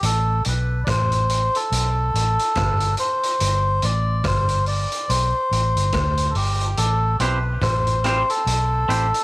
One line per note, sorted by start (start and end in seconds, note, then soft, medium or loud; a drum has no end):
0.03 0.41 A1 loud
0.03 0.43 A4 loud
0.03 closed hi-hat loud
0.45 0.84 B1 medium
0.45 0.84 B4 medium
0.45 closed hi-hat medium
0.84 1.48 A1 loud
0.84 0.89 D5 medium
0.84 kick loud
0.84 cross-stick loud
0.89 1.57 C5 loud
0.89 closed hi-hat medium
1.12 closed hi-hat medium
1.29 closed hi-hat medium
1.55 2.95 A4 loud
1.55 closed hi-hat medium
1.72 2.10 B1 loud
1.72 closed hi-hat loud
2.14 2.36 A1 medium
2.14 closed hi-hat medium
2.39 closed hi-hat medium
2.55 2.94 G1 medium
2.55 kick loud
2.55 cross-stick loud
2.55 closed hi-hat medium
2.80 closed hi-hat medium
2.97 3.85 C5 loud
2.97 closed hi-hat medium
3.23 closed hi-hat medium
3.40 3.79 G1 loud
3.40 closed hi-hat loud
3.82 4.21 A1 medium
3.82 4.27 D5 medium
3.82 closed hi-hat medium
4.24 4.85 G1 medium
4.24 4.65 C5 loud
4.24 kick loud
4.24 cross-stick loud
4.24 closed hi-hat medium
4.48 closed hi-hat medium
4.66 5.11 D5 medium
4.66 open hi-hat medium
4.91 closed hi-hat medium
5.09 5.32 B1 medium
5.09 6.33 C5 loud
5.09 closed hi-hat loud
5.51 5.73 A1 medium
5.51 closed hi-hat medium
5.76 5.92 G1 medium
5.76 closed hi-hat medium
5.92 6.31 D2 loud
5.92 kick loud
5.92 cross-stick loud
5.92 closed hi-hat medium
6.17 closed hi-hat medium
6.30 6.36 A4 medium
6.35 6.73 G1 medium
6.35 6.79 G4 medium
6.35 open hi-hat medium
6.61 closed hi-hat medium
6.77 7.16 A1 loud
6.77 7.16 A4 loud
6.77 closed hi-hat loud
7.20 7.58 B1 medium
7.20 7.37 C4 medium
7.20 7.37 E4 medium
7.20 7.38 G4 medium
7.20 7.63 B4 medium
7.20 7.38 C5 medium
7.20 closed hi-hat medium
7.62 8.22 A1 loud
7.62 8.31 C5 loud
7.62 kick loud
7.62 cross-stick loud
7.62 closed hi-hat medium
7.87 closed hi-hat medium
8.04 8.21 C4 medium
8.04 8.22 E4 medium
8.04 8.22 G4 loud
8.04 8.22 C5 medium
8.04 cross-stick medium
8.04 closed hi-hat medium
8.30 9.24 A4 loud
8.30 closed hi-hat soft
8.47 8.84 B1 loud
8.47 closed hi-hat loud
8.88 9.11 A1 medium
8.88 9.05 C4 medium
8.88 9.05 E4 medium
8.88 9.06 G4 medium
8.88 9.06 C5 medium
8.88 closed hi-hat medium
9.14 closed hi-hat medium